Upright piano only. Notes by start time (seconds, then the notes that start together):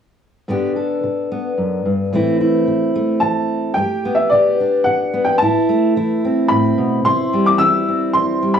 3.20 A5
3.74 G5
4.15 E5
4.30 D5
4.84 F#5
5.24 G5
5.38 A5
6.48 B5
7.05 C6
7.46 D6
7.58 E6
8.13 C6
8.54 B5